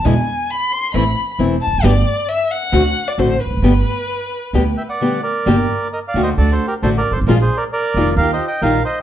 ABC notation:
X:1
M:4/4
L:1/16
Q:1/4=133
K:G
V:1 name="Violin"
^g4 b2 c'2 b4 z2 a2 | d4 e2 f4- f d c2 B2- | B12 z4 | [K:Gm] z16 |
z16 |]
V:2 name="Bandoneon"
z16 | z16 | z8 z2 [eg] [df]3 [_Bd]2- | [K:Gm] [Bd]4 (3[Be]2 [df]2 [ce]2 (3[Ad]2 [Ac]2 [GB]2 (3[Ac]2 [Bd]2 [Ac]2 |
(3[FB]2 [_Ac]2 [Bd]2 [Bd]4 (3[Bf]2 [ce]2 [eg]2 [Bf]2 [ce] z |]
V:3 name="String section"
[^G,DE]2 z6 [A,CE]2 z2 [A,CE]2 z2 | [A,B,G]2 z6 [CDF]2 z2 [CDF]2 z2 | [A,B,G]2 z6 [A,B,G]2 z2 [A,B,G]2 z2 | [K:Gm] [B,DG]2 z4 [B,DG]2 [A,D^F]2 z2 [A,DF]2 z2 |
[B,D_A]2 z4 [B,DA]2 [EFG]2 z2 [EFG]2 z2 |]
V:4 name="Nylon-string guitar"
[B,,D,^G,B,E]2 z6 [E,A,CE]2 z2 [E,A,CE]2 z2 | [D,G,B,G]2 z6 [D,A,CF]2 z2 [D,A,CF]2 z2 | [D,G,B,G]2 z6 [D,G,B,G]2 z2 [D,G,B,G]2 z2 | [K:Gm] [D,G,B,DG]2 z4 [D,A,D^F]2 z4 [D,A,DF]2 z2 |
[F,_A,DF]2 z4 [E,G,EF]2 z4 [E,G,EF]2 z2 |]
V:5 name="Upright bass" clef=bass
E,,3/2 z6 z/2 A,,,3/2 z2 z/2 E,,,3/2 z E,,,/2 =F,,,/2 ^F,,,/2 | G,,,3/2 z6 z/2 D,,3/2 z2 z/2 A,,,3/2 z E,,,/2 =F,,,/2 ^F,,,/2 | G,,,3/2 z6 z/2 D,,3/2 z6 z/2 | [K:Gm] G,,,3/2 z4 z/2 D,,3/2 z/2 D,,3/2 z2 z/2 A,,,3/2 z G,,,/2 _A,,,/2 =A,,,/2 |
B,,,3/2 z4 z/2 F,,,3/2 z/2 E,,3/2 z2 z/2 B,,,3/2 z2 z/2 |]